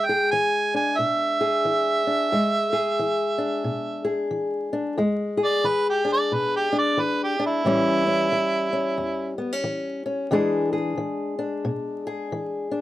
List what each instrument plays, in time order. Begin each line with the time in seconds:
Already playing: steel-string acoustic guitar E2 G#3
0.06 steel-string acoustic guitar G#4, harmonica G5
0.31 steel-string acoustic guitar E3, harmonica G#5
0.74 steel-string acoustic guitar D4, harmonica G#5
0.97 steel-string acoustic guitar B2, harmonica E5
1.41 steel-string acoustic guitar G#4
1.65 steel-string acoustic guitar E3
2.07 steel-string acoustic guitar D4
2.32 steel-string acoustic guitar E2 G#3
2.73 steel-string acoustic guitar G#4
2.99 steel-string acoustic guitar E3
3.38 steel-string acoustic guitar D4
3.64 steel-string acoustic guitar B2
4.04 steel-string acoustic guitar G#4
4.31 steel-string acoustic guitar E3
4.73 steel-string acoustic guitar D4
4.98 steel-string acoustic guitar E2 G#3
5.37 steel-string acoustic guitar G#4
5.44 harmonica D5
5.64 steel-string acoustic guitar E3, harmonica B4
5.90 harmonica G4
6.05 steel-string acoustic guitar D4
6.13 harmonica D5
6.32 steel-string acoustic guitar B2, harmonica B4
6.56 harmonica G4
6.72 steel-string acoustic guitar D4
6.79 harmonica D5
6.97 steel-string acoustic guitar E3, harmonica B4
7.24 harmonica G4
7.39 steel-string acoustic guitar D4
7.46 harmonica E4
7.65 steel-string acoustic guitar A2 E3 G3 C#4
8.07 steel-string acoustic guitar C#4
8.32 steel-string acoustic guitar E3
8.73 steel-string acoustic guitar C#4
8.98 steel-string acoustic guitar E2
9.38 steel-string acoustic guitar B3
9.52 steel-string acoustic guitar C#4
9.64 steel-string acoustic guitar E3
10.06 steel-string acoustic guitar C#4
10.31 steel-string acoustic guitar E2 E3 G#3 D4 G#4
10.73 steel-string acoustic guitar G#4
10.98 steel-string acoustic guitar E3
11.39 steel-string acoustic guitar D4
11.65 steel-string acoustic guitar B2
12.07 steel-string acoustic guitar G#4
12.32 steel-string acoustic guitar E3
12.71 steel-string acoustic guitar D4